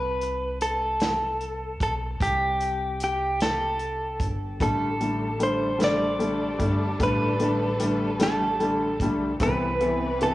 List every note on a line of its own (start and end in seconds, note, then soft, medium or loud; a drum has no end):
0.00 1.77 C2 loud
0.00 0.58 B4 medium
0.21 closed hi-hat soft
0.61 1.82 A4 medium
0.61 closed hi-hat medium
1.00 snare medium
1.00 closed hi-hat medium
1.41 closed hi-hat soft
1.80 2.18 B1 medium
1.80 1.93 A4 medium
1.80 kick medium
1.80 closed hi-hat medium
2.20 4.16 C2 medium
2.20 3.03 G4 medium
2.20 kick medium
2.20 closed hi-hat medium
2.61 closed hi-hat soft
3.00 3.42 G4 medium
3.00 closed hi-hat medium
3.40 4.27 A4 medium
3.40 snare medium
3.40 closed hi-hat medium
3.79 closed hi-hat soft
4.20 4.58 G1 medium
4.20 kick medium
4.20 closed hi-hat medium
4.58 6.56 A1 medium
4.58 4.87 D3 medium
4.58 9.36 G3 medium
4.58 4.87 G3 medium
4.58 4.87 A3 medium
4.58 9.36 D4 medium
4.58 9.35 A4 medium
4.58 kick medium
4.58 closed hi-hat medium
4.62 5.43 A4 medium
5.00 5.26 D3 medium
5.00 5.26 G3 medium
5.00 5.26 A3 medium
5.00 closed hi-hat soft
5.39 5.66 D3 medium
5.39 5.66 G3 medium
5.39 5.66 A3 medium
5.39 5.79 C5 medium
5.39 closed hi-hat medium
5.78 6.05 D3 medium
5.78 6.06 G3 medium
5.78 6.06 A3 medium
5.78 snare medium
5.78 closed hi-hat medium
5.84 7.03 D5 medium
6.18 6.45 D3 medium
6.18 6.46 G3 medium
6.18 6.46 A3 medium
6.18 closed hi-hat soft
6.58 6.97 G1 medium
6.58 6.85 D3 medium
6.58 6.86 G3 medium
6.58 6.85 A3 medium
6.58 kick medium
6.58 closed hi-hat medium
6.99 8.99 A1 medium
6.99 7.26 D3 medium
6.99 7.26 G3 medium
6.99 7.26 A3 medium
6.99 8.23 B4 medium
6.99 kick medium
6.99 closed hi-hat medium
7.39 7.66 D3 medium
7.39 7.66 G3 soft
7.39 7.66 A3 medium
7.39 closed hi-hat soft
7.80 8.06 D3 medium
7.80 8.06 G3 medium
7.80 8.06 A3 medium
7.80 closed hi-hat medium
8.19 8.46 D3 medium
8.19 8.46 G3 medium
8.19 8.46 A3 medium
8.19 9.08 A4 medium
8.19 snare medium
8.19 closed hi-hat medium
8.59 8.86 D3 medium
8.59 8.86 G3 medium
8.59 8.86 A3 medium
8.59 closed hi-hat soft
8.99 9.38 B1 medium
8.99 9.27 D3 medium
8.99 9.27 G3 medium
8.99 9.27 A3 medium
8.99 kick medium
8.99 closed hi-hat medium
9.39 10.34 C2 loud
9.39 9.67 C3 medium
9.39 10.34 E3 medium
9.39 9.67 E3 medium
9.39 9.67 B3 medium
9.39 10.34 C4 medium
9.39 10.34 B4 medium
9.39 10.18 B4 medium
9.39 kick loud
9.39 closed hi-hat medium
9.80 10.07 C3 medium
9.80 10.07 E3 medium
9.80 10.07 B3 medium
9.80 closed hi-hat soft
10.21 10.34 C3 medium
10.21 10.34 E3 medium
10.21 10.34 B3 medium
10.21 10.34 A4 medium
10.21 closed hi-hat medium